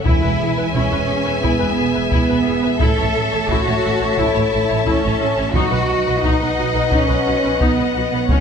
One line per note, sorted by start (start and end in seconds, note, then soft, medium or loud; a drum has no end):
0.05 0.12 E1 medium
0.05 1.04 E2 medium
0.05 0.70 E4 medium
0.05 0.21 E4 medium
0.05 2.76 G#4 medium
0.05 2.76 B4 medium
0.05 5.55 E5 medium
0.05 2.80 G#5 medium
0.05 taiko medium
0.22 0.30 E1 soft
0.22 0.29 B4 soft
0.39 0.47 E1 medium
0.39 0.46 G#4 medium
0.57 0.64 E1 soft
0.57 0.64 B4 soft
0.74 0.81 E1 medium
0.74 1.43 C#4 medium
0.74 0.90 E4 medium
0.74 taiko medium
0.91 0.98 E1 medium
0.91 0.98 B4 soft
1.07 1.16 E1 soft
1.07 1.14 G#4 medium
1.25 1.33 E1 medium
1.25 1.32 B4 soft
1.41 1.50 E1 medium
1.41 2.10 B3 medium
1.41 1.58 E4 medium
1.41 taiko medium
1.59 1.67 E1 soft
1.59 1.66 B4 medium
1.77 1.85 E1 medium
1.77 1.84 G#4 soft
1.94 2.02 E1 medium
1.94 2.01 B4 medium
2.11 2.19 E1 medium
2.11 2.79 B3 medium
2.11 2.27 E4 medium
2.11 taiko medium
2.29 2.37 E1 medium
2.29 2.35 B4 medium
2.46 2.54 E1 medium
2.46 2.53 G#4 medium
2.62 2.71 E1 medium
2.62 2.69 B4 medium
2.79 2.89 A1 medium
2.79 2.96 E4 medium
2.79 5.39 A4 medium
2.79 3.48 A4 medium
2.79 5.39 C#5 medium
2.79 5.51 A5 medium
2.79 taiko medium
2.97 3.06 A1 medium
2.97 3.04 C#5 medium
3.14 3.23 A1 medium
3.14 3.21 A4 medium
3.32 3.40 A1 medium
3.32 3.38 C#5 soft
3.48 3.57 A1 medium
3.48 3.65 E4 medium
3.48 4.18 F#4 medium
3.48 taiko medium
3.66 3.74 A1 medium
3.66 3.73 C#5 soft
3.83 3.91 A1 medium
3.83 3.90 A4 soft
4.01 4.08 A1 medium
4.01 4.07 C#5 medium
4.17 4.25 A1 medium
4.17 4.33 E4 medium
4.17 4.86 E4 medium
4.17 taiko medium
4.34 4.43 A1 medium
4.34 4.41 C#5 soft
4.51 4.60 A1 medium
4.51 4.58 A4 medium
4.69 4.77 A1 medium
4.69 4.75 C#5 medium
4.86 4.94 A1 medium
4.86 5.53 C#4 medium
4.86 5.02 E4 medium
4.86 taiko medium
5.04 5.11 A1 medium
5.04 5.10 C#5 medium
5.20 5.28 A1 medium
5.20 5.27 A4 medium
5.37 5.45 A1 medium
5.37 5.44 C#5 medium
5.55 5.62 B1 medium
5.55 6.54 B2 medium
5.55 5.71 D#4 medium
5.55 6.23 F#4 medium
5.55 8.26 B4 medium
5.55 8.29 D#5 medium
5.55 8.26 D#5 medium
5.55 8.40 F#5 medium
5.55 taiko medium
5.72 5.79 B1 medium
5.72 5.79 B4 medium
5.89 5.96 B1 medium
5.89 5.96 F#4 medium
6.06 6.13 B1 medium
6.06 6.13 B4 soft
6.23 6.30 B1 medium
6.23 6.39 D#4 medium
6.23 6.92 D#4 medium
6.23 taiko medium
6.40 6.47 B1 medium
6.40 6.47 B4 soft
6.57 6.64 B1 medium
6.57 6.64 F#4 medium
6.74 6.81 B1 medium
6.74 6.82 B4 soft
6.92 6.99 B1 medium
6.92 7.61 C#4 medium
6.92 7.08 D#4 medium
6.92 taiko medium
7.08 7.16 B1 medium
7.08 7.15 B4 medium
7.26 7.33 B1 medium
7.26 7.33 F#4 medium
7.43 7.50 B1 soft
7.43 7.50 B4 medium
7.60 7.67 B1 medium
7.60 8.29 B3 medium
7.60 7.76 D#4 medium
7.60 taiko medium
7.77 7.84 B1 medium
7.77 7.85 B4 medium
7.94 8.01 B1 soft
7.94 8.03 F#4 medium
8.11 8.18 B1 soft
8.11 8.20 B4 medium
8.28 8.35 F#1 medium
8.28 8.40 A3 medium
8.28 8.40 C#4 medium
8.28 8.40 A4 medium
8.28 8.40 C#5 medium
8.28 taiko medium